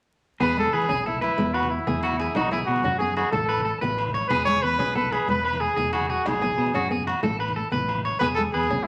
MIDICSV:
0, 0, Header, 1, 8, 480
1, 0, Start_track
1, 0, Key_signature, 4, "major"
1, 0, Tempo, 324851
1, 607, Time_signature, 12, 3, 24, 8
1, 13106, End_track
2, 0, Start_track
2, 0, Title_t, "Clean electric guitar"
2, 0, Program_c, 0, 27
2, 596, Note_on_c, 0, 68, 83
2, 1058, Note_off_c, 0, 68, 0
2, 1080, Note_on_c, 0, 71, 68
2, 1312, Note_off_c, 0, 71, 0
2, 1319, Note_on_c, 0, 68, 80
2, 1552, Note_off_c, 0, 68, 0
2, 1568, Note_on_c, 0, 69, 67
2, 1787, Note_off_c, 0, 69, 0
2, 1793, Note_on_c, 0, 71, 68
2, 2257, Note_off_c, 0, 71, 0
2, 2280, Note_on_c, 0, 71, 71
2, 2512, Note_off_c, 0, 71, 0
2, 2765, Note_on_c, 0, 68, 70
2, 2995, Note_off_c, 0, 68, 0
2, 3004, Note_on_c, 0, 66, 73
2, 3234, Note_off_c, 0, 66, 0
2, 3245, Note_on_c, 0, 68, 69
2, 3475, Note_off_c, 0, 68, 0
2, 3496, Note_on_c, 0, 66, 89
2, 3721, Note_off_c, 0, 66, 0
2, 3735, Note_on_c, 0, 68, 68
2, 4188, Note_off_c, 0, 68, 0
2, 4211, Note_on_c, 0, 66, 76
2, 4438, Note_off_c, 0, 66, 0
2, 4446, Note_on_c, 0, 68, 70
2, 4675, Note_off_c, 0, 68, 0
2, 4681, Note_on_c, 0, 66, 68
2, 4913, Note_off_c, 0, 66, 0
2, 4920, Note_on_c, 0, 69, 74
2, 5146, Note_off_c, 0, 69, 0
2, 5152, Note_on_c, 0, 71, 75
2, 5387, Note_off_c, 0, 71, 0
2, 5393, Note_on_c, 0, 69, 68
2, 5628, Note_off_c, 0, 69, 0
2, 5634, Note_on_c, 0, 71, 75
2, 6097, Note_off_c, 0, 71, 0
2, 6119, Note_on_c, 0, 73, 69
2, 6352, Note_off_c, 0, 73, 0
2, 6361, Note_on_c, 0, 68, 81
2, 6821, Note_off_c, 0, 68, 0
2, 6836, Note_on_c, 0, 71, 69
2, 7070, Note_off_c, 0, 71, 0
2, 7086, Note_on_c, 0, 68, 73
2, 7315, Note_off_c, 0, 68, 0
2, 7321, Note_on_c, 0, 69, 68
2, 7552, Note_off_c, 0, 69, 0
2, 7570, Note_on_c, 0, 71, 66
2, 8025, Note_off_c, 0, 71, 0
2, 8044, Note_on_c, 0, 71, 76
2, 8270, Note_off_c, 0, 71, 0
2, 8276, Note_on_c, 0, 68, 71
2, 8499, Note_off_c, 0, 68, 0
2, 8517, Note_on_c, 0, 68, 73
2, 8750, Note_off_c, 0, 68, 0
2, 8760, Note_on_c, 0, 66, 73
2, 8992, Note_off_c, 0, 66, 0
2, 9007, Note_on_c, 0, 68, 71
2, 9236, Note_off_c, 0, 68, 0
2, 9489, Note_on_c, 0, 68, 66
2, 9945, Note_off_c, 0, 68, 0
2, 9973, Note_on_c, 0, 66, 78
2, 10199, Note_off_c, 0, 66, 0
2, 10216, Note_on_c, 0, 68, 64
2, 10440, Note_off_c, 0, 68, 0
2, 10448, Note_on_c, 0, 66, 66
2, 10676, Note_off_c, 0, 66, 0
2, 10692, Note_on_c, 0, 69, 78
2, 10918, Note_off_c, 0, 69, 0
2, 10933, Note_on_c, 0, 71, 72
2, 11159, Note_off_c, 0, 71, 0
2, 11172, Note_on_c, 0, 69, 67
2, 11399, Note_off_c, 0, 69, 0
2, 11409, Note_on_c, 0, 71, 74
2, 11865, Note_off_c, 0, 71, 0
2, 11895, Note_on_c, 0, 73, 62
2, 12120, Note_off_c, 0, 73, 0
2, 12136, Note_on_c, 0, 68, 83
2, 12589, Note_off_c, 0, 68, 0
2, 12619, Note_on_c, 0, 71, 74
2, 12842, Note_off_c, 0, 71, 0
2, 12865, Note_on_c, 0, 68, 74
2, 13086, Note_off_c, 0, 68, 0
2, 13106, End_track
3, 0, Start_track
3, 0, Title_t, "Trumpet"
3, 0, Program_c, 1, 56
3, 615, Note_on_c, 1, 71, 97
3, 835, Note_off_c, 1, 71, 0
3, 873, Note_on_c, 1, 69, 96
3, 1083, Note_on_c, 1, 68, 95
3, 1106, Note_off_c, 1, 69, 0
3, 1566, Note_off_c, 1, 68, 0
3, 1579, Note_on_c, 1, 64, 76
3, 1797, Note_off_c, 1, 64, 0
3, 1814, Note_on_c, 1, 64, 84
3, 2281, Note_on_c, 1, 66, 86
3, 2303, Note_off_c, 1, 64, 0
3, 2510, Note_off_c, 1, 66, 0
3, 2518, Note_on_c, 1, 64, 79
3, 3482, Note_on_c, 1, 63, 76
3, 3504, Note_off_c, 1, 64, 0
3, 3713, Note_off_c, 1, 63, 0
3, 3722, Note_on_c, 1, 64, 80
3, 3831, Note_off_c, 1, 64, 0
3, 3930, Note_on_c, 1, 66, 83
3, 4394, Note_off_c, 1, 66, 0
3, 4409, Note_on_c, 1, 68, 79
3, 4651, Note_off_c, 1, 68, 0
3, 4675, Note_on_c, 1, 68, 81
3, 4886, Note_off_c, 1, 68, 0
3, 4895, Note_on_c, 1, 69, 79
3, 5580, Note_off_c, 1, 69, 0
3, 6327, Note_on_c, 1, 71, 96
3, 6570, Note_off_c, 1, 71, 0
3, 6578, Note_on_c, 1, 73, 98
3, 6834, Note_on_c, 1, 71, 101
3, 6856, Note_off_c, 1, 73, 0
3, 7321, Note_off_c, 1, 71, 0
3, 7333, Note_on_c, 1, 71, 88
3, 7568, Note_on_c, 1, 68, 78
3, 7591, Note_off_c, 1, 71, 0
3, 7809, Note_off_c, 1, 68, 0
3, 7828, Note_on_c, 1, 71, 90
3, 8042, Note_off_c, 1, 71, 0
3, 8066, Note_on_c, 1, 71, 86
3, 8286, Note_on_c, 1, 68, 82
3, 8309, Note_off_c, 1, 71, 0
3, 8767, Note_off_c, 1, 68, 0
3, 8783, Note_on_c, 1, 68, 77
3, 9020, Note_on_c, 1, 66, 78
3, 9042, Note_off_c, 1, 68, 0
3, 9275, Note_on_c, 1, 68, 83
3, 9297, Note_off_c, 1, 66, 0
3, 10222, Note_off_c, 1, 68, 0
3, 12107, Note_on_c, 1, 71, 96
3, 12220, Note_off_c, 1, 71, 0
3, 12341, Note_on_c, 1, 69, 87
3, 12456, Note_off_c, 1, 69, 0
3, 12606, Note_on_c, 1, 68, 95
3, 13053, Note_on_c, 1, 64, 84
3, 13076, Note_off_c, 1, 68, 0
3, 13106, Note_off_c, 1, 64, 0
3, 13106, End_track
4, 0, Start_track
4, 0, Title_t, "Steel-string acoustic guitar"
4, 0, Program_c, 2, 25
4, 598, Note_on_c, 2, 59, 81
4, 799, Note_off_c, 2, 59, 0
4, 847, Note_on_c, 2, 56, 75
4, 1241, Note_off_c, 2, 56, 0
4, 1313, Note_on_c, 2, 61, 74
4, 1516, Note_off_c, 2, 61, 0
4, 1566, Note_on_c, 2, 59, 65
4, 1961, Note_off_c, 2, 59, 0
4, 2037, Note_on_c, 2, 56, 81
4, 2436, Note_off_c, 2, 56, 0
4, 2766, Note_on_c, 2, 59, 78
4, 3161, Note_off_c, 2, 59, 0
4, 3486, Note_on_c, 2, 63, 86
4, 3684, Note_off_c, 2, 63, 0
4, 3716, Note_on_c, 2, 59, 69
4, 4116, Note_off_c, 2, 59, 0
4, 4200, Note_on_c, 2, 61, 78
4, 4401, Note_off_c, 2, 61, 0
4, 4438, Note_on_c, 2, 59, 69
4, 4836, Note_off_c, 2, 59, 0
4, 5658, Note_on_c, 2, 59, 73
4, 6048, Note_off_c, 2, 59, 0
4, 6362, Note_on_c, 2, 59, 85
4, 6562, Note_off_c, 2, 59, 0
4, 6602, Note_on_c, 2, 56, 73
4, 6999, Note_off_c, 2, 56, 0
4, 7073, Note_on_c, 2, 61, 78
4, 7276, Note_off_c, 2, 61, 0
4, 7325, Note_on_c, 2, 59, 72
4, 7720, Note_off_c, 2, 59, 0
4, 7810, Note_on_c, 2, 56, 78
4, 8203, Note_off_c, 2, 56, 0
4, 8531, Note_on_c, 2, 59, 75
4, 8924, Note_off_c, 2, 59, 0
4, 9243, Note_on_c, 2, 63, 89
4, 9442, Note_off_c, 2, 63, 0
4, 9482, Note_on_c, 2, 59, 76
4, 9878, Note_off_c, 2, 59, 0
4, 9965, Note_on_c, 2, 61, 85
4, 10164, Note_off_c, 2, 61, 0
4, 10207, Note_on_c, 2, 59, 68
4, 10601, Note_off_c, 2, 59, 0
4, 10683, Note_on_c, 2, 57, 82
4, 11079, Note_off_c, 2, 57, 0
4, 11402, Note_on_c, 2, 59, 72
4, 11799, Note_off_c, 2, 59, 0
4, 12127, Note_on_c, 2, 59, 91
4, 12325, Note_off_c, 2, 59, 0
4, 12388, Note_on_c, 2, 56, 72
4, 12774, Note_off_c, 2, 56, 0
4, 12865, Note_on_c, 2, 61, 84
4, 13056, Note_off_c, 2, 61, 0
4, 13106, End_track
5, 0, Start_track
5, 0, Title_t, "Fingered electric bass"
5, 0, Program_c, 3, 33
5, 595, Note_on_c, 3, 40, 92
5, 980, Note_off_c, 3, 40, 0
5, 1082, Note_on_c, 3, 52, 87
5, 1274, Note_off_c, 3, 52, 0
5, 1324, Note_on_c, 3, 35, 79
5, 1895, Note_off_c, 3, 35, 0
5, 2046, Note_on_c, 3, 40, 100
5, 2617, Note_off_c, 3, 40, 0
5, 2766, Note_on_c, 3, 40, 87
5, 3337, Note_off_c, 3, 40, 0
5, 3488, Note_on_c, 3, 35, 96
5, 3868, Note_off_c, 3, 35, 0
5, 3961, Note_on_c, 3, 47, 77
5, 4154, Note_off_c, 3, 47, 0
5, 4207, Note_on_c, 3, 42, 88
5, 4777, Note_off_c, 3, 42, 0
5, 4914, Note_on_c, 3, 33, 97
5, 5489, Note_off_c, 3, 33, 0
5, 5644, Note_on_c, 3, 33, 83
5, 6215, Note_off_c, 3, 33, 0
5, 6364, Note_on_c, 3, 28, 92
5, 6746, Note_off_c, 3, 28, 0
5, 6843, Note_on_c, 3, 40, 83
5, 7035, Note_off_c, 3, 40, 0
5, 7075, Note_on_c, 3, 35, 82
5, 7649, Note_off_c, 3, 35, 0
5, 7800, Note_on_c, 3, 28, 98
5, 8372, Note_off_c, 3, 28, 0
5, 8520, Note_on_c, 3, 28, 86
5, 9093, Note_off_c, 3, 28, 0
5, 9242, Note_on_c, 3, 35, 99
5, 9624, Note_off_c, 3, 35, 0
5, 9717, Note_on_c, 3, 47, 86
5, 9912, Note_off_c, 3, 47, 0
5, 9964, Note_on_c, 3, 42, 86
5, 10535, Note_off_c, 3, 42, 0
5, 10690, Note_on_c, 3, 33, 99
5, 11259, Note_off_c, 3, 33, 0
5, 11414, Note_on_c, 3, 33, 84
5, 11982, Note_off_c, 3, 33, 0
5, 12139, Note_on_c, 3, 28, 94
5, 12515, Note_off_c, 3, 28, 0
5, 12627, Note_on_c, 3, 40, 86
5, 12810, Note_off_c, 3, 40, 0
5, 12856, Note_on_c, 3, 35, 90
5, 13106, Note_off_c, 3, 35, 0
5, 13106, End_track
6, 0, Start_track
6, 0, Title_t, "Muted clean electric guitar strokes"
6, 9247, Note_on_c, 9, 29, 81
6, 9394, Note_off_c, 9, 29, 0
6, 13106, End_track
7, 0, Start_track
7, 0, Title_t, "Muted steel-string acoustic guitar strokes"
7, 4915, Note_on_c, 9, 29, 78
7, 5063, Note_off_c, 9, 29, 0
7, 13106, End_track
8, 0, Start_track
8, 0, Title_t, "Drums"
8, 589, Note_on_c, 9, 68, 64
8, 604, Note_on_c, 9, 62, 88
8, 604, Note_on_c, 9, 64, 99
8, 737, Note_off_c, 9, 68, 0
8, 752, Note_off_c, 9, 62, 0
8, 752, Note_off_c, 9, 64, 0
8, 840, Note_on_c, 9, 63, 80
8, 970, Note_on_c, 9, 64, 73
8, 988, Note_off_c, 9, 63, 0
8, 1071, Note_on_c, 9, 68, 60
8, 1118, Note_off_c, 9, 64, 0
8, 1208, Note_on_c, 9, 62, 78
8, 1208, Note_on_c, 9, 63, 78
8, 1219, Note_off_c, 9, 68, 0
8, 1325, Note_on_c, 9, 64, 85
8, 1356, Note_off_c, 9, 62, 0
8, 1356, Note_off_c, 9, 63, 0
8, 1473, Note_off_c, 9, 64, 0
8, 1692, Note_on_c, 9, 63, 72
8, 1692, Note_on_c, 9, 64, 73
8, 1792, Note_on_c, 9, 68, 56
8, 1801, Note_on_c, 9, 62, 86
8, 1839, Note_off_c, 9, 63, 0
8, 1839, Note_off_c, 9, 64, 0
8, 1939, Note_off_c, 9, 68, 0
8, 1949, Note_off_c, 9, 62, 0
8, 2039, Note_on_c, 9, 63, 92
8, 2039, Note_on_c, 9, 64, 91
8, 2163, Note_off_c, 9, 64, 0
8, 2163, Note_on_c, 9, 64, 28
8, 2187, Note_off_c, 9, 63, 0
8, 2280, Note_on_c, 9, 68, 65
8, 2311, Note_off_c, 9, 64, 0
8, 2407, Note_on_c, 9, 62, 76
8, 2407, Note_on_c, 9, 63, 80
8, 2407, Note_on_c, 9, 64, 79
8, 2428, Note_off_c, 9, 68, 0
8, 2524, Note_off_c, 9, 64, 0
8, 2524, Note_on_c, 9, 64, 30
8, 2555, Note_off_c, 9, 62, 0
8, 2555, Note_off_c, 9, 63, 0
8, 2672, Note_off_c, 9, 64, 0
8, 2761, Note_on_c, 9, 64, 99
8, 2879, Note_off_c, 9, 64, 0
8, 2879, Note_on_c, 9, 63, 72
8, 2879, Note_on_c, 9, 64, 30
8, 2995, Note_on_c, 9, 62, 95
8, 2999, Note_on_c, 9, 68, 57
8, 3027, Note_off_c, 9, 63, 0
8, 3027, Note_off_c, 9, 64, 0
8, 3125, Note_on_c, 9, 64, 73
8, 3143, Note_off_c, 9, 62, 0
8, 3147, Note_off_c, 9, 68, 0
8, 3243, Note_off_c, 9, 64, 0
8, 3243, Note_on_c, 9, 63, 105
8, 3243, Note_on_c, 9, 64, 31
8, 3391, Note_off_c, 9, 63, 0
8, 3391, Note_off_c, 9, 64, 0
8, 3469, Note_on_c, 9, 62, 104
8, 3469, Note_on_c, 9, 64, 94
8, 3480, Note_on_c, 9, 68, 66
8, 3617, Note_off_c, 9, 62, 0
8, 3617, Note_off_c, 9, 64, 0
8, 3628, Note_off_c, 9, 68, 0
8, 3709, Note_on_c, 9, 63, 95
8, 3832, Note_on_c, 9, 64, 65
8, 3857, Note_off_c, 9, 63, 0
8, 3953, Note_on_c, 9, 68, 60
8, 3980, Note_off_c, 9, 64, 0
8, 4077, Note_on_c, 9, 62, 75
8, 4077, Note_on_c, 9, 63, 78
8, 4101, Note_off_c, 9, 68, 0
8, 4192, Note_on_c, 9, 64, 91
8, 4225, Note_off_c, 9, 62, 0
8, 4225, Note_off_c, 9, 63, 0
8, 4340, Note_off_c, 9, 64, 0
8, 4555, Note_on_c, 9, 63, 76
8, 4678, Note_on_c, 9, 62, 88
8, 4684, Note_on_c, 9, 68, 58
8, 4703, Note_off_c, 9, 63, 0
8, 4825, Note_off_c, 9, 62, 0
8, 4831, Note_off_c, 9, 68, 0
8, 4923, Note_on_c, 9, 63, 89
8, 4923, Note_on_c, 9, 64, 93
8, 5049, Note_off_c, 9, 64, 0
8, 5049, Note_on_c, 9, 64, 28
8, 5071, Note_off_c, 9, 63, 0
8, 5153, Note_on_c, 9, 68, 64
8, 5196, Note_off_c, 9, 64, 0
8, 5282, Note_on_c, 9, 62, 75
8, 5282, Note_on_c, 9, 63, 76
8, 5282, Note_on_c, 9, 64, 76
8, 5300, Note_off_c, 9, 68, 0
8, 5402, Note_off_c, 9, 64, 0
8, 5402, Note_on_c, 9, 64, 30
8, 5430, Note_off_c, 9, 62, 0
8, 5430, Note_off_c, 9, 63, 0
8, 5549, Note_off_c, 9, 64, 0
8, 5643, Note_on_c, 9, 64, 97
8, 5755, Note_on_c, 9, 63, 71
8, 5791, Note_off_c, 9, 64, 0
8, 5881, Note_on_c, 9, 68, 63
8, 5888, Note_on_c, 9, 62, 88
8, 5903, Note_off_c, 9, 63, 0
8, 6001, Note_on_c, 9, 64, 69
8, 6029, Note_off_c, 9, 68, 0
8, 6036, Note_off_c, 9, 62, 0
8, 6125, Note_off_c, 9, 64, 0
8, 6125, Note_on_c, 9, 63, 99
8, 6125, Note_on_c, 9, 64, 28
8, 6273, Note_off_c, 9, 63, 0
8, 6273, Note_off_c, 9, 64, 0
8, 6360, Note_on_c, 9, 62, 89
8, 6360, Note_on_c, 9, 64, 88
8, 6361, Note_on_c, 9, 68, 61
8, 6508, Note_off_c, 9, 62, 0
8, 6508, Note_off_c, 9, 64, 0
8, 6509, Note_off_c, 9, 68, 0
8, 6732, Note_on_c, 9, 64, 68
8, 6852, Note_on_c, 9, 68, 64
8, 6880, Note_off_c, 9, 64, 0
8, 6976, Note_on_c, 9, 62, 68
8, 6976, Note_on_c, 9, 63, 70
8, 7000, Note_off_c, 9, 68, 0
8, 7094, Note_on_c, 9, 64, 88
8, 7123, Note_off_c, 9, 62, 0
8, 7123, Note_off_c, 9, 63, 0
8, 7241, Note_off_c, 9, 64, 0
8, 7452, Note_on_c, 9, 63, 69
8, 7452, Note_on_c, 9, 64, 66
8, 7571, Note_on_c, 9, 68, 63
8, 7573, Note_on_c, 9, 62, 90
8, 7600, Note_off_c, 9, 63, 0
8, 7600, Note_off_c, 9, 64, 0
8, 7719, Note_off_c, 9, 68, 0
8, 7721, Note_off_c, 9, 62, 0
8, 7810, Note_on_c, 9, 63, 86
8, 7810, Note_on_c, 9, 64, 86
8, 7958, Note_off_c, 9, 63, 0
8, 7958, Note_off_c, 9, 64, 0
8, 8058, Note_on_c, 9, 68, 66
8, 8173, Note_on_c, 9, 62, 77
8, 8173, Note_on_c, 9, 63, 74
8, 8173, Note_on_c, 9, 64, 72
8, 8205, Note_off_c, 9, 68, 0
8, 8303, Note_off_c, 9, 64, 0
8, 8303, Note_on_c, 9, 64, 29
8, 8321, Note_off_c, 9, 62, 0
8, 8321, Note_off_c, 9, 63, 0
8, 8451, Note_off_c, 9, 64, 0
8, 8533, Note_on_c, 9, 64, 89
8, 8647, Note_off_c, 9, 64, 0
8, 8647, Note_on_c, 9, 63, 71
8, 8647, Note_on_c, 9, 64, 30
8, 8759, Note_on_c, 9, 62, 95
8, 8765, Note_on_c, 9, 68, 63
8, 8795, Note_off_c, 9, 63, 0
8, 8795, Note_off_c, 9, 64, 0
8, 8883, Note_on_c, 9, 64, 72
8, 8906, Note_off_c, 9, 62, 0
8, 8913, Note_off_c, 9, 68, 0
8, 9006, Note_off_c, 9, 64, 0
8, 9006, Note_on_c, 9, 63, 93
8, 9006, Note_on_c, 9, 64, 31
8, 9154, Note_off_c, 9, 63, 0
8, 9154, Note_off_c, 9, 64, 0
8, 9246, Note_on_c, 9, 68, 64
8, 9254, Note_on_c, 9, 62, 95
8, 9254, Note_on_c, 9, 64, 89
8, 9394, Note_off_c, 9, 68, 0
8, 9402, Note_off_c, 9, 62, 0
8, 9402, Note_off_c, 9, 64, 0
8, 9497, Note_on_c, 9, 63, 86
8, 9612, Note_on_c, 9, 64, 65
8, 9644, Note_off_c, 9, 63, 0
8, 9720, Note_on_c, 9, 68, 61
8, 9734, Note_off_c, 9, 64, 0
8, 9734, Note_on_c, 9, 64, 25
8, 9846, Note_on_c, 9, 62, 72
8, 9846, Note_on_c, 9, 63, 71
8, 9868, Note_off_c, 9, 68, 0
8, 9882, Note_off_c, 9, 64, 0
8, 9980, Note_on_c, 9, 64, 84
8, 9994, Note_off_c, 9, 62, 0
8, 9994, Note_off_c, 9, 63, 0
8, 10106, Note_off_c, 9, 64, 0
8, 10106, Note_on_c, 9, 64, 23
8, 10218, Note_off_c, 9, 64, 0
8, 10218, Note_on_c, 9, 64, 26
8, 10343, Note_off_c, 9, 64, 0
8, 10343, Note_on_c, 9, 63, 62
8, 10343, Note_on_c, 9, 64, 66
8, 10453, Note_on_c, 9, 68, 55
8, 10454, Note_on_c, 9, 62, 86
8, 10490, Note_off_c, 9, 63, 0
8, 10490, Note_off_c, 9, 64, 0
8, 10575, Note_on_c, 9, 64, 27
8, 10601, Note_off_c, 9, 68, 0
8, 10602, Note_off_c, 9, 62, 0
8, 10686, Note_off_c, 9, 64, 0
8, 10686, Note_on_c, 9, 63, 86
8, 10686, Note_on_c, 9, 64, 85
8, 10833, Note_off_c, 9, 63, 0
8, 10833, Note_off_c, 9, 64, 0
8, 10930, Note_on_c, 9, 68, 62
8, 11057, Note_on_c, 9, 62, 64
8, 11057, Note_on_c, 9, 63, 66
8, 11057, Note_on_c, 9, 64, 68
8, 11078, Note_off_c, 9, 68, 0
8, 11204, Note_off_c, 9, 62, 0
8, 11204, Note_off_c, 9, 63, 0
8, 11204, Note_off_c, 9, 64, 0
8, 11419, Note_on_c, 9, 64, 89
8, 11539, Note_on_c, 9, 63, 63
8, 11567, Note_off_c, 9, 64, 0
8, 11652, Note_on_c, 9, 68, 60
8, 11654, Note_on_c, 9, 62, 83
8, 11654, Note_on_c, 9, 64, 27
8, 11687, Note_off_c, 9, 63, 0
8, 11774, Note_off_c, 9, 64, 0
8, 11774, Note_on_c, 9, 64, 63
8, 11800, Note_off_c, 9, 68, 0
8, 11802, Note_off_c, 9, 62, 0
8, 11895, Note_on_c, 9, 63, 83
8, 11921, Note_off_c, 9, 64, 0
8, 12042, Note_off_c, 9, 63, 0
8, 12141, Note_on_c, 9, 68, 64
8, 12144, Note_on_c, 9, 62, 80
8, 12144, Note_on_c, 9, 64, 80
8, 12288, Note_off_c, 9, 68, 0
8, 12292, Note_off_c, 9, 62, 0
8, 12292, Note_off_c, 9, 64, 0
8, 12391, Note_on_c, 9, 63, 79
8, 12512, Note_on_c, 9, 64, 60
8, 12538, Note_off_c, 9, 63, 0
8, 12619, Note_on_c, 9, 68, 58
8, 12660, Note_off_c, 9, 64, 0
8, 12757, Note_on_c, 9, 62, 63
8, 12757, Note_on_c, 9, 63, 65
8, 12767, Note_off_c, 9, 68, 0
8, 12867, Note_on_c, 9, 64, 83
8, 12905, Note_off_c, 9, 62, 0
8, 12905, Note_off_c, 9, 63, 0
8, 13014, Note_off_c, 9, 64, 0
8, 13106, End_track
0, 0, End_of_file